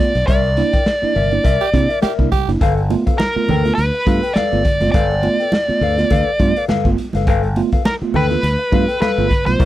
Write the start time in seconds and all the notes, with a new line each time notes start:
Already playing: D5
0.00 A3 B3 F4
0.15 B1, muted clean electric guitar stroke, snare, closed hi-hat
0.27 C2 C3 G3 A#4 D5 E5, kick, closed hi-hat
0.44 muted clean electric guitar stroke, closed hi-hat
0.57 A#3 D4 E4, muted clean electric guitar stroke, closed hi-hat
0.73 A#4 D5 G5, kick, closed hi-hat
0.86 muted clean electric guitar stroke, snare
1.02 A#3 D4 E4, muted fingered electric bass stroke, closed hi-hat
1.15 G1 C3 G3 A#4 D5 E5, open hi-hat
1.31 A#3 D4 E4, muted clean electric guitar stroke, closed hi-hat
1.44 C2 A#4 D5 E5, kick, closed hi-hat
1.61 G4, closed hi-hat
1.74 C3 A#3 D4 E4, muted clean electric guitar stroke, kick, closed hi-hat
1.89 A#4 D5 E5, closed hi-hat
2.02 G4 A#4 D5 E5, muted fingered electric bass stroke, snare
2.19 C2 A#3 D4 E4, kick
2.32 C3 G3 G4, kick, closed hi-hat
2.48 F#1 A#3 D4 E4, muted clean electric guitar stroke, snare, closed hi-hat
2.61 G1 G2 D3 A4 B4 F5, kick, closed hi-hat
2.77 muted clean electric guitar stroke, closed hi-hat
2.90 A3 B3 F4, muted clean electric guitar stroke, closed hi-hat, muted conga
3.06 B3 F4 A4 B4 F5, kick, closed hi-hat
3.18 A#4, muted clean electric guitar stroke, snare, high conga
3.36 A3 B3 F4, muted clean electric guitar stroke, muted fingered electric bass stroke, closed hi-hat
3.49 D2 G2 D3 A4 B4 G5, open hi-hat, low conga
3.65 A3 B3 F4, muted clean electric guitar stroke, snare, closed hi-hat
3.75 D2 B4, muted clean electric guitar stroke, closed hi-hat
3.79 muted conga
3.94 muted clean electric guitar stroke, closed hi-hat
4.07 G2 A3 B3 F4 A4 B4 F5, kick, closed hi-hat
4.23 A4 B4 G5, closed hi-hat
4.34 A4 B4 D5 F5, muted fingered electric bass stroke, snare, high conga
4.52 G1 A3 B3 F4, closed hi-hat
4.65 G2 D3, muted clean electric guitar stroke, kick, closed hi-hat
4.81 F#1 A3 B3 F4, muted clean electric guitar stroke, snare, closed hi-hat, high conga
4.92 G1 G2 D3 A4 B4 D5 F5, kick, closed hi-hat
5.11 muted clean electric guitar stroke, closed hi-hat
5.23 A3 B3 F4, muted clean electric guitar stroke, closed hi-hat, muted conga
5.40 A4 B4 G5, closed hi-hat
5.52 muted clean electric guitar stroke, snare, high conga
5.69 A3 B3 F4, muted fingered electric bass stroke, closed hi-hat
5.81 D2 G2 D3 A4 B4 F5, open hi-hat
5.98 A3 B3 F4, muted clean electric guitar stroke, snare, closed hi-hat
6.10 D2 A4 B4 F5, kick, closed hi-hat, muted conga, low conga
6.27 closed hi-hat
6.39 G2 A3 B3 F4, muted clean electric guitar stroke, kick, closed hi-hat, muted conga
6.56 A4 B4 F5, closed hi-hat
6.68 G2 D3 A4 B4 F5, muted fingered electric bass stroke, snare, high conga
6.85 G1 A3 B3 F4, kick, closed hi-hat
6.98 muted clean electric guitar stroke, closed hi-hat
7.13 F#1 A4 B4 F5, snare, closed hi-hat, high conga
7.27 G1 G2 D3 A4 B4 F5, kick, closed hi-hat
7.43 muted clean electric guitar stroke, closed hi-hat
7.56 A3 B3 F4, muted clean electric guitar stroke, closed hi-hat, muted conga
7.72 A4 B4 F5, kick, closed hi-hat
7.85 A#4, muted clean electric guitar stroke, snare, high conga
8.01 A3 B3 F4, muted fingered electric bass stroke, muted clean electric guitar stroke, closed hi-hat
8.14 D2 G2 D3 A4 B4 G5, open hi-hat, low conga
8.30 A3 B3 F4, muted clean electric guitar stroke, snare, closed hi-hat
8.43 D2, muted clean electric guitar stroke, closed hi-hat, muted conga
8.59 muted clean electric guitar stroke, closed hi-hat
8.72 G2 A3 B3 F4 A4 B4 F5, kick, closed hi-hat, muted conga
8.88 A4 B4 G5, closed hi-hat
9.00 A4 B4 F5, muted fingered electric bass stroke, snare, high conga
9.18 G1 A3 B3 F4, closed hi-hat
9.30 G2 D3, muted clean electric guitar stroke, kick, closed hi-hat
9.45 B1 A3 B3 F4 C5, muted clean electric guitar stroke, snare, closed hi-hat, high conga
9.59 C2 C3 G3 E4 A#4 D5, kick, closed hi-hat